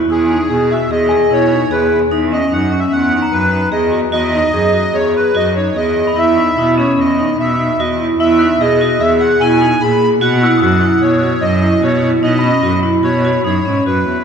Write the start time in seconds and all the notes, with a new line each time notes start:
0.10 E2 E4 G#4
0.30 D#4
0.50 B2 G#4
0.71 F#4 E5
0.90 E2 G#4 D#5
1.09 G#4 G#5
1.31 B2 E4 C#5
1.51 D#4
1.71 E2 G#4 B4
2.11 E2 D#4
2.32 C#4 D#5
2.52 F#2 D#4 F#5
2.72 C#4
2.79 E5
2.92 E2 F#5
3.12 D#4
3.22 A#5
3.32 F#2 B4
3.52 D#4
3.72 E2 G#4 D#5
3.92 F#4
4.12 E2 F#4 D#5
4.33 D#4
4.53 F#2 G#4
4.73 F#4
4.93 E2 G#4 C#5
5.14 G#4 B4
5.35 F#2 F#4 D#5
5.56 D#4 C#5
5.76 E2 G#4 D#5
6.07 B5
6.16 E2 E4 E5
6.37 D#4
6.58 B2 E4 D#6
6.78 C#4 C#5
6.99 E2 D#5
7.19 D#4
7.40 B2 E5
7.59 D#4
7.79 E2 F#4 D#5
8.00 E4
8.20 E2 E4 E5
8.39 D#4 F#6
8.60 B2 G#4 D#5
8.81 F#4
9.00 E2 G#4 E5
9.21 G#4 F#5
9.40 B2 E4 G#5
9.61 D#4
9.81 A#2 G#4 B5
10.21 B2 F#4 F#5
10.41 E4 E6
10.58 D#6
10.62 F#2 F#4 F#5
10.82 E4
11.02 B2 C#5
11.22 F#4
11.42 F#2 D#5
11.62 E4
11.82 B2 F#4 C#5
12.03 E4
12.23 B2 D#4 D#5
12.39 B5
12.43 C#4
12.63 F#2 F#4
12.83 E4
13.03 B2 F#4 C#5
13.25 F#4
13.44 F#2 D#4 C#5
13.65 G#2 C#4
13.86 F#2 F#4 B4
14.08 E2